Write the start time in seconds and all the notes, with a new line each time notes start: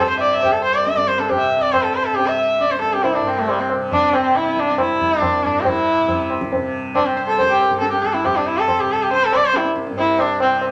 Already playing: C2 G2 C3
0.09 C5
0.18 D5 E5
0.32 E5
0.38 C2
0.42 G4, tabla tin, tabla ge
0.52 A4
0.64 C5
0.74 D5
0.85 E5, tabla te
0.93 G2 D5
0.98 tabla te
1.07 C5, tabla ke
1.19 A4, tabla te
1.29 G4, tabla tin, tabla ge
1.39 E5
1.51 C3
1.62 D5
1.72 C5, tabla na, tabla ge
1.83 A4
1.95 C5
2.05 C3 A4
2.15 G4, tabla tin
2.27 E5
2.58 D5 E5, tabla te
2.64 C2
2.71 C5, tabla te
2.81 A4, tabla ke
2.92 G4, tabla te
3.03 E4, tabla tin
3.13 D4 E4
3.20 G2
3.27 C4
3.39 A3
3.48 G3, tabla na
3.60 C4
3.70 tabla na
3.76 C3
3.91 D4, tabla tin, tabla ge
4.13 C4, tabla na
4.33 C3 E4, tabla te
4.46 tabla te
4.56 D4, tabla ke
4.68 tabla te
4.78 E4, tabla na, tabla ge
4.87 C2
5.00 tabla ge
5.21 D4, tabla na, tabla ge
5.43 G2 D4, tabla ge
5.60 G4
5.65 E4, tabla tin, tabla ge
5.99 C3
6.08 tabla tin, tabla ge
6.30 tabla na
6.41 tabla ke
6.52 C3, tabla tin, tabla ge
6.95 D4, tabla na, tabla ge
7.06 C4
7.11 C2
7.17 C5, tabla te
7.25 A4 C5
7.38 C5, tabla tin, tabla ge
7.49 G4
7.60 tabla na
7.67 G2, tabla ke
7.80 A4, tabla te
7.91 G4, tabla te
8.02 A4, tabla ke
8.14 E4, tabla te
8.23 C3 G4, tabla tin, tabla ge
8.36 D4
8.47 E4
8.58 A4
8.68 tabla na, tabla ge
8.79 C3 G4
8.92 A4
9.02 G4
9.11 C5, tabla tin
9.24 A4
9.32 C2 D5, tabla na
9.45 C5
9.54 E4, tabla te
9.65 tabla te
9.76 tabla ke
9.87 G2, tabla te
9.97 E4, tabla tin
10.19 D4, tabla na
10.40 C4, tabla na
10.46 C3
10.61 tabla na